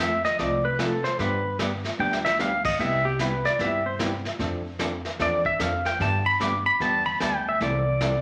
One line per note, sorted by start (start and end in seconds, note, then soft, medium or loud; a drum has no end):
0.00 0.23 F2 medium
0.00 0.10 F3 medium
0.00 0.11 A3 medium
0.00 0.11 C4 medium
0.00 0.11 F4 medium
0.00 0.11 A4 medium
0.00 0.24 E5 medium
0.24 0.39 D#5 loud
0.24 snare soft
0.39 1.03 C2 medium
0.39 0.61 F3 medium
0.39 0.61 A3 medium
0.39 0.61 C4 medium
0.39 0.61 F4 medium
0.39 0.61 A4 medium
0.39 0.64 D5 medium
0.39 brush sweep soft
0.39 kick soft
0.39 snare soft
0.65 0.79 B4 medium
0.79 0.91 F3 medium
0.79 0.91 A3 medium
0.79 0.91 C4 medium
0.79 0.91 F4 medium
0.79 1.04 A4 medium
0.79 0.91 A4 medium
0.79 kick soft
0.79 snare medium
0.79 hi-hat pedal medium
1.04 1.18 C5 loud
1.04 snare soft
1.19 1.83 G2 medium
1.19 1.41 D3 medium
1.19 1.41 G3 medium
1.19 1.41 B3 medium
1.19 1.42 D4 medium
1.19 1.41 G4 medium
1.19 1.57 B4 medium
1.19 brush sweep medium
1.19 kick soft
1.19 snare soft
1.59 1.71 D3 medium
1.59 1.71 G3 medium
1.59 1.71 B3 medium
1.59 1.71 D4 medium
1.59 1.71 G4 medium
1.59 kick soft
1.59 snare medium
1.59 hi-hat pedal medium
1.84 snare soft
1.99 2.63 D2 medium
1.99 2.21 D3 medium
1.99 2.21 G3 medium
1.99 2.21 B3 medium
1.99 2.21 D4 medium
1.99 2.22 G4 medium
1.99 2.25 G5 medium
2.13 snare medium
2.25 2.39 E5 medium
2.25 snare medium
2.39 2.51 D3 medium
2.39 2.51 G3 medium
2.39 2.51 B3 medium
2.39 2.51 D4 medium
2.39 2.51 G4 medium
2.39 2.65 F5 loud
2.39 snare medium
2.39 hi-hat pedal medium
2.65 2.79 D#5 medium
2.65 kick medium
2.65 crash medium
2.79 3.43 C2 medium
2.79 3.01 C3 medium
2.79 3.01 G3 medium
2.79 3.01 B3 medium
2.79 3.01 E4 medium
2.79 3.02 G4 medium
2.79 3.05 E5 medium
2.79 brush sweep soft
2.79 kick soft
2.79 snare soft
3.05 3.19 G4 medium
3.19 3.31 C3 medium
3.19 3.31 G3 medium
3.19 3.31 B3 medium
3.19 3.31 E4 medium
3.19 3.31 G4 medium
3.19 3.45 B4 medium
3.19 kick soft
3.19 snare medium
3.19 hi-hat pedal medium
3.45 3.59 D5 loud
3.45 snare soft
3.59 4.23 G2 medium
3.59 3.81 C3 medium
3.59 3.82 G3 medium
3.59 3.82 B3 medium
3.59 3.82 E4 medium
3.59 3.82 G4 medium
3.59 3.85 E5 medium
3.59 brush sweep soft
3.59 kick soft
3.59 snare soft
3.86 3.94 C5 medium
3.99 4.11 C3 medium
3.99 4.11 G3 medium
3.99 4.11 B3 medium
3.99 4.11 E4 medium
3.99 4.11 G4 medium
3.99 kick soft
3.99 snare medium
3.99 hi-hat pedal medium
4.25 snare soft
4.39 5.04 F2 medium
4.39 4.61 F3 medium
4.39 4.61 C4 medium
4.39 4.62 D4 medium
4.39 4.62 A4 medium
4.39 brush sweep soft
4.39 kick soft
4.39 snare soft
4.79 4.91 F3 medium
4.79 4.91 C4 medium
4.79 4.92 D4 medium
4.79 4.92 A4 medium
4.79 kick soft
4.79 snare medium
4.79 hi-hat pedal medium
5.05 snare soft
5.19 5.54 E2 medium
5.19 5.41 F3 medium
5.19 5.42 C4 medium
5.19 5.42 D4 medium
5.19 5.42 A4 medium
5.19 5.45 D5 medium
5.19 brush sweep soft
5.19 kick soft
5.19 snare soft
5.45 5.60 E5 medium
5.45 kick soft
5.59 5.94 F2 medium
5.59 5.71 F3 medium
5.59 5.72 C4 medium
5.59 5.72 D4 medium
5.59 5.72 A4 medium
5.59 5.86 F5 medium
5.59 kick soft
5.59 snare medium
5.59 hi-hat pedal medium
5.85 6.00 G5 medium
5.85 snare soft
6.00 6.64 G2 medium
6.00 6.22 D3 medium
6.00 6.22 G3 medium
6.00 6.22 B3 medium
6.00 6.22 D4 medium
6.00 6.22 G4 medium
6.00 6.26 A5 medium
6.00 brush sweep soft
6.00 kick soft
6.00 snare soft
6.26 6.40 B5 loud
6.40 6.51 D3 medium
6.40 6.52 G3 medium
6.40 6.52 B3 medium
6.40 6.52 D4 medium
6.40 6.52 G4 medium
6.40 6.66 D6 loud
6.40 kick soft
6.40 snare medium
6.40 hi-hat pedal medium
6.66 6.80 B5 loud
6.80 7.14 E2 medium
6.80 7.02 D3 medium
6.80 7.02 G3 medium
6.80 7.02 B3 medium
6.80 7.03 D4 medium
6.80 7.03 G4 medium
6.80 7.06 A5 medium
6.80 brush sweep soft
6.80 kick soft
6.80 snare soft
7.06 7.20 B5 loud
7.20 7.54 D2 medium
7.20 7.32 D3 medium
7.20 7.32 G3 medium
7.20 7.32 B3 medium
7.20 7.32 D4 medium
7.20 7.32 G4 medium
7.20 7.36 A5 medium
7.20 kick soft
7.20 snare medium
7.20 hi-hat pedal medium
7.36 7.48 G5 medium
7.49 7.61 E5 medium
7.60 8.21 C2 medium
7.60 7.82 C3 medium
7.60 7.82 E3 medium
7.60 7.83 G3 medium
7.60 7.83 C4 medium
7.60 7.83 E4 medium
7.60 7.83 A4 medium
7.60 8.21 D5 medium
7.60 brush sweep soft
7.60 kick soft
7.60 snare soft
8.01 8.12 C3 medium
8.01 8.12 E3 medium
8.01 8.12 G3 medium
8.01 8.12 C4 medium
8.01 8.13 E4 medium
8.01 8.13 A4 medium
8.01 kick soft
8.01 snare medium
8.01 hi-hat pedal medium